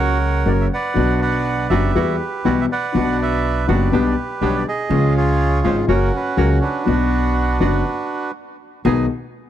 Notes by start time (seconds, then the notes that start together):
Already playing: C#2 C#3 F#3 A#3 F#4 A#4 C#5 F#5
0.46 F#1 F#2 C#3 F#3 A#3 F#4 D5
0.61 E5
0.73 B4 D5 F#5
0.94 B1 B2 D3 F#3 B3 D4 F#4
1.21 B4 D5 F#5
1.70 F#1 F#2 D3 F#3 B3 D4 F#4 G4 B4 E5
1.95 E2 E3 G3 B3 E4 F#4
2.44 B1 B2 E3 G3 B3 E4 F#4 D5
2.61 E5
2.71 B4 D5 F#5
2.92 B1 B2 D3 F#3 B3 D4 F#4
2.97 F#4
3.22 B4 E5
3.67 F#1 F#2 D3 F#3 B3 D4 F#4 B4
3.71 G4 D5
3.92 B1 B2 D3 G3 B3 D4 G4
4.41 B1 B2 D3 G3 B3 D4 G4
4.45 C#5
4.55 D5
4.68 G#4 D#5
4.89 C#2 C#3 F3 G#3 C#4 F4
5.17 F4 G#4 C#5
5.64 G#1 G#2 C#3 F3 G#3 C#4 F4 C5
5.88 F#1 F#2 C#3 F#3 A#3 C#4 F#4 A#4
6.16 B4
6.37 C#2 C#3 F#3 A#3 C#4 F#4 A#4
6.61 D4 F#4 B4
6.84 B1 B2 D3 F#3 B3 D4 F#4
7.60 F#1 F#2 D3 F#3 B3 D4 F#4
8.85 B1 B2 D#3 G#3 B3 D#4 F#4 G#4